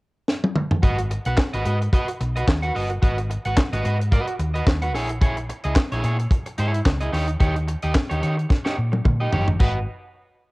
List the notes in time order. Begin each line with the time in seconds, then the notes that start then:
0.28 snare
0.44 high tom
0.56 mid tom
0.71 floor tom
0.83 G#1 F#4 B4 D#5, kick, closed hi-hat
0.98 muted clean electric guitar stroke, closed hi-hat
1.11 muted clean electric guitar stroke, closed hi-hat
1.25 B1 F#4 B4 F#5, closed hi-hat
1.38 muted clean electric guitar stroke, kick, snare, clap
1.53 G#1 F#4 B4 D#5, closed hi-hat
1.65 G#2 F#4 B4 D#5, closed hi-hat
1.81 muted clean electric guitar stroke, closed hi-hat
1.93 F#4 B4 D#5, kick, closed hi-hat
2.08 muted clean electric guitar stroke, closed hi-hat
2.20 B1, muted clean electric guitar stroke, closed hi-hat
2.36 F#4 B4 D#5, closed hi-hat
2.48 D#2, muted clean electric guitar stroke, kick, snare, clap
2.62 F#4 B4 F#5, closed hi-hat
2.75 G1 F#4 B4 D#5, open hi-hat
2.90 muted clean electric guitar stroke, closed hi-hat
3.02 G#1 F#4 B4 D#5, kick, closed hi-hat
3.18 muted clean electric guitar stroke, closed hi-hat
3.30 muted clean electric guitar stroke, closed hi-hat
3.45 G#1 F#4 B4 F#5, closed hi-hat
3.57 muted clean electric guitar stroke, kick, snare, clap
3.73 G#1 F#4 B4 D#5, closed hi-hat
3.84 G#2 F#4 B4 D#5, closed hi-hat
3.99 muted clean electric guitar stroke, closed hi-hat
4.12 F#4 B4 D#5, kick, closed hi-hat
4.27 muted clean electric guitar stroke, closed hi-hat
4.39 D#2, muted clean electric guitar stroke, closed hi-hat
4.54 F#4 B4 D#5, closed hi-hat
4.67 D#2, muted clean electric guitar stroke, kick, snare, clap
4.82 F#4 B4 F#5, closed hi-hat
4.94 A#1 E4 G#4 C#5, snare, open hi-hat
5.09 muted clean electric guitar stroke, closed hi-hat
5.21 E4 G#4 C#5, kick, closed hi-hat
5.37 muted clean electric guitar stroke, closed hi-hat
5.49 muted clean electric guitar stroke, closed hi-hat
5.64 C#2 E4 G#4 D#5, closed hi-hat
5.76 muted clean electric guitar stroke, kick, snare, clap
5.92 A#1 E4 G#4 C#5, closed hi-hat
6.03 A#2 E4 G#4 C#5, closed hi-hat
6.19 muted clean electric guitar stroke, closed hi-hat
6.31 muted clean electric guitar stroke, kick, closed hi-hat
6.46 muted clean electric guitar stroke, closed hi-hat
6.58 G#2 E4 G#4 C#5, closed hi-hat
6.73 muted clean electric guitar stroke, closed hi-hat
6.85 C#2, muted clean electric guitar stroke, kick, snare, clap
7.00 E4 G#4 D#5, closed hi-hat
7.12 D#2 D#4 G4 C#5, snare, open hi-hat
7.28 muted clean electric guitar stroke, closed hi-hat
7.40 D#2 D#4 G4 C#5, kick, closed hi-hat
7.56 muted clean electric guitar stroke, closed hi-hat
7.68 muted clean electric guitar stroke, closed hi-hat
7.82 D#2 D#4 G4 D#5, closed hi-hat
7.95 muted clean electric guitar stroke, kick, snare, clap
8.10 D#2 D#4 G4 C#5, closed hi-hat
8.22 D#3 D#4 G4 C#5, closed hi-hat
8.37 muted clean electric guitar stroke, closed hi-hat
8.49 muted clean electric guitar stroke, kick, snare
8.65 D#4 G4 C#5, snare
8.77 A#2, muted clean electric guitar stroke
8.92 muted clean electric guitar stroke, high tom
9.05 A#2, muted clean electric guitar stroke, kick, mid tom
9.20 D#4 G4 D#5
9.32 G1 D#4 G4 C#5, floor tom
9.48 muted clean electric guitar stroke, floor tom
9.60 G#1 F#4 B4 D#5, kick, crash